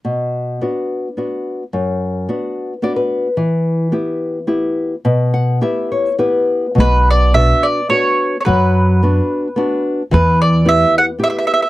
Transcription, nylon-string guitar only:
0, 0, Header, 1, 2, 480
1, 0, Start_track
1, 0, Key_signature, 2, "minor"
1, 0, Tempo, 555556
1, 51, Time_signature, 3, 2, 24, 8
1, 3890, Tempo, 567108
1, 7250, Tempo, 546448
1, 10082, End_track
2, 0, Start_track
2, 0, Title_t, "Nylon-string guitar"
2, 0, Program_c, 0, 24
2, 40, Note_on_c, 0, 47, 46
2, 523, Note_off_c, 0, 47, 0
2, 530, Note_on_c, 0, 59, 33
2, 533, Note_on_c, 0, 62, 31
2, 540, Note_on_c, 0, 66, 31
2, 925, Note_off_c, 0, 62, 0
2, 926, Note_off_c, 0, 59, 0
2, 931, Note_off_c, 0, 66, 0
2, 1011, Note_on_c, 0, 59, 28
2, 1014, Note_on_c, 0, 62, 29
2, 1021, Note_on_c, 0, 66, 35
2, 1400, Note_off_c, 0, 59, 0
2, 1403, Note_off_c, 0, 62, 0
2, 1405, Note_off_c, 0, 66, 0
2, 1496, Note_on_c, 0, 42, 49
2, 1960, Note_off_c, 0, 42, 0
2, 1976, Note_on_c, 0, 62, 34
2, 1977, Note_on_c, 0, 59, 35
2, 1981, Note_on_c, 0, 66, 38
2, 2355, Note_off_c, 0, 59, 0
2, 2355, Note_off_c, 0, 62, 0
2, 2358, Note_off_c, 0, 66, 0
2, 2438, Note_on_c, 0, 59, 34
2, 2442, Note_on_c, 0, 62, 34
2, 2450, Note_on_c, 0, 74, 53
2, 2453, Note_on_c, 0, 66, 35
2, 2557, Note_off_c, 0, 74, 0
2, 2560, Note_on_c, 0, 71, 49
2, 2823, Note_off_c, 0, 59, 0
2, 2826, Note_off_c, 0, 62, 0
2, 2832, Note_off_c, 0, 66, 0
2, 2893, Note_off_c, 0, 71, 0
2, 2912, Note_on_c, 0, 52, 55
2, 3384, Note_off_c, 0, 52, 0
2, 3387, Note_on_c, 0, 59, 35
2, 3391, Note_on_c, 0, 64, 30
2, 3395, Note_on_c, 0, 67, 39
2, 3781, Note_off_c, 0, 59, 0
2, 3783, Note_off_c, 0, 64, 0
2, 3786, Note_off_c, 0, 67, 0
2, 3863, Note_on_c, 0, 59, 39
2, 3868, Note_on_c, 0, 64, 37
2, 3872, Note_on_c, 0, 67, 41
2, 4256, Note_off_c, 0, 59, 0
2, 4259, Note_off_c, 0, 64, 0
2, 4261, Note_off_c, 0, 67, 0
2, 4352, Note_on_c, 0, 47, 64
2, 4597, Note_on_c, 0, 78, 55
2, 4817, Note_off_c, 0, 78, 0
2, 4824, Note_off_c, 0, 47, 0
2, 4830, Note_on_c, 0, 64, 35
2, 4834, Note_on_c, 0, 67, 42
2, 4837, Note_on_c, 0, 59, 40
2, 4840, Note_on_c, 0, 76, 52
2, 5079, Note_off_c, 0, 76, 0
2, 5087, Note_on_c, 0, 73, 43
2, 5228, Note_off_c, 0, 59, 0
2, 5228, Note_off_c, 0, 64, 0
2, 5229, Note_off_c, 0, 67, 0
2, 5309, Note_off_c, 0, 73, 0
2, 5314, Note_on_c, 0, 59, 41
2, 5318, Note_on_c, 0, 67, 44
2, 5320, Note_on_c, 0, 64, 36
2, 5320, Note_on_c, 0, 71, 56
2, 5711, Note_off_c, 0, 59, 0
2, 5714, Note_off_c, 0, 64, 0
2, 5714, Note_off_c, 0, 67, 0
2, 5779, Note_off_c, 0, 71, 0
2, 5792, Note_on_c, 0, 47, 60
2, 6270, Note_off_c, 0, 47, 0
2, 6291, Note_on_c, 0, 62, 32
2, 6296, Note_on_c, 0, 59, 37
2, 6297, Note_on_c, 0, 66, 42
2, 6675, Note_off_c, 0, 59, 0
2, 6675, Note_off_c, 0, 62, 0
2, 6677, Note_off_c, 0, 66, 0
2, 6757, Note_on_c, 0, 59, 34
2, 6765, Note_on_c, 0, 62, 31
2, 6773, Note_on_c, 0, 66, 43
2, 7144, Note_off_c, 0, 59, 0
2, 7149, Note_off_c, 0, 62, 0
2, 7154, Note_off_c, 0, 66, 0
2, 7242, Note_on_c, 0, 54, 67
2, 7719, Note_off_c, 0, 54, 0
2, 7737, Note_on_c, 0, 59, 42
2, 7743, Note_on_c, 0, 62, 35
2, 7744, Note_on_c, 0, 66, 42
2, 8122, Note_off_c, 0, 59, 0
2, 8125, Note_off_c, 0, 66, 0
2, 8126, Note_off_c, 0, 62, 0
2, 8206, Note_on_c, 0, 59, 45
2, 8218, Note_on_c, 0, 62, 39
2, 8220, Note_on_c, 0, 66, 47
2, 8596, Note_off_c, 0, 59, 0
2, 8603, Note_off_c, 0, 66, 0
2, 8604, Note_off_c, 0, 62, 0
2, 8691, Note_on_c, 0, 52, 65
2, 9159, Note_off_c, 0, 52, 0
2, 9166, Note_on_c, 0, 59, 45
2, 9171, Note_on_c, 0, 64, 38
2, 9172, Note_on_c, 0, 67, 41
2, 9550, Note_off_c, 0, 59, 0
2, 9553, Note_off_c, 0, 64, 0
2, 9553, Note_off_c, 0, 67, 0
2, 9633, Note_on_c, 0, 59, 35
2, 9641, Note_on_c, 0, 64, 33
2, 9642, Note_on_c, 0, 67, 48
2, 10023, Note_off_c, 0, 59, 0
2, 10027, Note_off_c, 0, 64, 0
2, 10029, Note_off_c, 0, 67, 0
2, 10082, End_track
0, 0, End_of_file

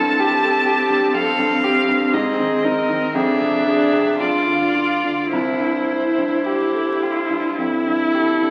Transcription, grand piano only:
0, 0, Header, 1, 2, 480
1, 0, Start_track
1, 0, Key_signature, 0, "major"
1, 0, Tempo, 940439
1, 583, Tempo, 995025
1, 1063, Time_signature, 3, 2, 24, 8
1, 1063, Tempo, 1029160
1, 2023, Tempo, 1125704
1, 3860, End_track
2, 0, Start_track
2, 0, Title_t, "Grand piano"
2, 0, Program_c, 0, 0
2, 0, Control_c, 0, 64, 127
2, 0, Note_on_c, 0, 36, 62
2, 0, Note_on_c, 0, 43, 50
2, 0, Note_on_c, 0, 64, 50
2, 53, Note_off_c, 0, 64, 0
2, 101, Note_on_c, 0, 67, 58
2, 172, Note_off_c, 0, 43, 0
2, 220, Note_on_c, 0, 69, 44
2, 291, Note_off_c, 0, 67, 0
2, 335, Note_on_c, 0, 67, 47
2, 339, Note_off_c, 0, 69, 0
2, 458, Note_on_c, 0, 43, 39
2, 531, Note_off_c, 0, 67, 0
2, 580, Note_on_c, 0, 41, 39
2, 653, Note_off_c, 0, 43, 0
2, 699, Note_on_c, 0, 43, 45
2, 700, Note_off_c, 0, 41, 0
2, 823, Note_on_c, 0, 67, 52
2, 893, Note_off_c, 0, 43, 0
2, 941, Note_on_c, 0, 43, 43
2, 1015, Note_off_c, 0, 67, 0
2, 1044, Note_off_c, 0, 36, 0
2, 1062, Note_on_c, 0, 44, 56
2, 1063, Note_off_c, 0, 43, 0
2, 1072, Control_c, 0, 64, 0
2, 1137, Control_c, 0, 64, 127
2, 1180, Note_on_c, 0, 51, 38
2, 1301, Note_on_c, 0, 63, 45
2, 1368, Note_off_c, 0, 51, 0
2, 1415, Note_on_c, 0, 51, 45
2, 1487, Note_off_c, 0, 63, 0
2, 1518, Note_off_c, 0, 44, 0
2, 1532, Note_off_c, 0, 51, 0
2, 1535, Note_on_c, 0, 41, 58
2, 1540, Control_c, 0, 64, 0
2, 1633, Control_c, 0, 64, 127
2, 1657, Note_on_c, 0, 48, 42
2, 1773, Note_on_c, 0, 62, 46
2, 1849, Note_off_c, 0, 48, 0
2, 1895, Note_on_c, 0, 48, 36
2, 1972, Note_off_c, 0, 62, 0
2, 2010, Note_off_c, 0, 41, 0
2, 2023, Note_off_c, 0, 48, 0
2, 2023, Note_on_c, 0, 43, 45
2, 2030, Control_c, 0, 64, 0
2, 2094, Control_c, 0, 64, 127
2, 2140, Note_on_c, 0, 50, 40
2, 2259, Note_on_c, 0, 65, 39
2, 2332, Note_off_c, 0, 50, 0
2, 2381, Note_on_c, 0, 50, 36
2, 2454, Note_off_c, 0, 65, 0
2, 2490, Note_off_c, 0, 43, 0
2, 2503, Note_off_c, 0, 50, 0
2, 2506, Note_on_c, 0, 36, 45
2, 2513, Control_c, 0, 64, 0
2, 2603, Control_c, 0, 64, 127
2, 2621, Note_on_c, 0, 43, 33
2, 2747, Note_on_c, 0, 64, 35
2, 2818, Note_off_c, 0, 43, 0
2, 2868, Note_on_c, 0, 43, 36
2, 2940, Note_off_c, 0, 64, 0
2, 2988, Note_on_c, 0, 67, 39
2, 3060, Note_off_c, 0, 43, 0
2, 3109, Note_on_c, 0, 69, 29
2, 3180, Note_off_c, 0, 67, 0
2, 3228, Note_off_c, 0, 69, 0
2, 3230, Note_on_c, 0, 67, 39
2, 3346, Note_on_c, 0, 43, 30
2, 3420, Note_off_c, 0, 67, 0
2, 3467, Note_on_c, 0, 41, 30
2, 3537, Note_off_c, 0, 43, 0
2, 3586, Note_off_c, 0, 41, 0
2, 3588, Note_on_c, 0, 43, 33
2, 3708, Note_on_c, 0, 67, 35
2, 3779, Note_off_c, 0, 43, 0
2, 3824, Note_on_c, 0, 43, 30
2, 3860, Note_off_c, 0, 36, 0
2, 3860, Note_off_c, 0, 43, 0
2, 3860, Note_off_c, 0, 67, 0
2, 3860, End_track
0, 0, End_of_file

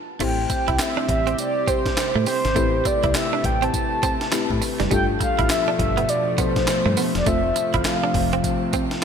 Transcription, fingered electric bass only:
0, 0, Header, 1, 2, 480
1, 0, Start_track
1, 0, Key_signature, 0, "minor"
1, 0, Tempo, 588235
1, 167, Time_signature, 4, 2, 24, 8
1, 7377, End_track
2, 0, Start_track
2, 0, Title_t, "Fingered electric bass"
2, 0, Program_c, 0, 33
2, 168, Note_on_c, 0, 33, 107
2, 367, Note_off_c, 0, 33, 0
2, 557, Note_on_c, 0, 36, 97
2, 633, Note_off_c, 0, 36, 0
2, 888, Note_on_c, 0, 33, 96
2, 1088, Note_off_c, 0, 33, 0
2, 1758, Note_on_c, 0, 45, 107
2, 1833, Note_off_c, 0, 45, 0
2, 1999, Note_on_c, 0, 32, 92
2, 2074, Note_off_c, 0, 32, 0
2, 2090, Note_on_c, 0, 33, 101
2, 2289, Note_off_c, 0, 33, 0
2, 2479, Note_on_c, 0, 36, 94
2, 2554, Note_off_c, 0, 36, 0
2, 2809, Note_on_c, 0, 33, 99
2, 3008, Note_off_c, 0, 33, 0
2, 3678, Note_on_c, 0, 45, 107
2, 3753, Note_off_c, 0, 45, 0
2, 3920, Note_on_c, 0, 30, 91
2, 3994, Note_off_c, 0, 30, 0
2, 4010, Note_on_c, 0, 31, 112
2, 4209, Note_off_c, 0, 31, 0
2, 4399, Note_on_c, 0, 33, 102
2, 4474, Note_off_c, 0, 33, 0
2, 4728, Note_on_c, 0, 31, 96
2, 4927, Note_off_c, 0, 31, 0
2, 5596, Note_on_c, 0, 43, 106
2, 5672, Note_off_c, 0, 43, 0
2, 5836, Note_on_c, 0, 28, 88
2, 5912, Note_off_c, 0, 28, 0
2, 5928, Note_on_c, 0, 29, 101
2, 6128, Note_off_c, 0, 29, 0
2, 6317, Note_on_c, 0, 31, 101
2, 6393, Note_off_c, 0, 31, 0
2, 6647, Note_on_c, 0, 29, 96
2, 6847, Note_off_c, 0, 29, 0
2, 7377, End_track
0, 0, End_of_file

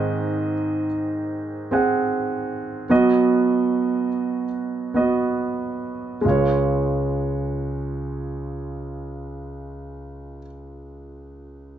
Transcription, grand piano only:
0, 0, Header, 1, 2, 480
1, 0, Start_track
1, 0, Key_signature, -5, "major"
1, 0, Tempo, 778210
1, 1302, Tempo, 809717
1, 1773, Time_signature, 4, 2, 24, 8
1, 2742, Tempo, 853485
1, 3702, Tempo, 874636
1, 6742, End_track
2, 0, Start_track
2, 0, Title_t, "Grand piano"
2, 0, Program_c, 0, 0
2, 0, Control_c, 0, 64, 127
2, 0, Note_on_c, 0, 44, 66
2, 0, Note_on_c, 0, 51, 64
2, 0, Note_on_c, 0, 60, 71
2, 0, Note_on_c, 0, 68, 63
2, 0, Note_on_c, 0, 70, 42
2, 0, Note_on_c, 0, 75, 85
2, 0, Note_on_c, 0, 78, 46
2, 317, Note_off_c, 0, 44, 0
2, 317, Note_off_c, 0, 51, 0
2, 530, Note_off_c, 0, 60, 0
2, 533, Note_off_c, 0, 68, 0
2, 536, Note_off_c, 0, 75, 0
2, 1056, Note_on_c, 0, 60, 63
2, 1063, Note_on_c, 0, 68, 55
2, 1067, Note_off_c, 0, 78, 0
2, 1067, Note_on_c, 0, 78, 60
2, 1736, Note_off_c, 0, 60, 0
2, 1739, Note_off_c, 0, 68, 0
2, 1741, Note_off_c, 0, 78, 0
2, 1766, Note_on_c, 0, 59, 64
2, 1772, Note_on_c, 0, 54, 55
2, 1772, Note_on_c, 0, 66, 58
2, 1774, Note_on_c, 0, 47, 56
2, 1776, Note_on_c, 0, 75, 66
2, 1780, Control_c, 0, 64, 0
2, 1786, Note_off_c, 0, 70, 0
2, 1871, Control_c, 0, 64, 127
2, 2471, Note_off_c, 0, 54, 0
2, 2472, Note_off_c, 0, 47, 0
2, 2688, Note_off_c, 0, 59, 0
2, 2691, Note_off_c, 0, 66, 0
2, 2693, Note_off_c, 0, 75, 0
2, 2968, Note_on_c, 0, 59, 57
2, 2975, Note_on_c, 0, 66, 51
2, 2979, Note_on_c, 0, 75, 55
2, 3659, Note_off_c, 0, 59, 0
2, 3663, Note_off_c, 0, 66, 0
2, 3665, Note_off_c, 0, 75, 0
2, 3684, Note_on_c, 0, 56, 57
2, 3701, Note_on_c, 0, 65, 48
2, 3703, Note_on_c, 0, 37, 49
2, 3706, Control_c, 0, 64, 0
2, 3722, Note_on_c, 0, 73, 59
2, 3802, Control_c, 0, 64, 127
2, 5969, Note_off_c, 0, 56, 0
2, 5986, Note_off_c, 0, 65, 0
2, 5988, Note_off_c, 0, 37, 0
2, 6006, Note_off_c, 0, 73, 0
2, 6742, End_track
0, 0, End_of_file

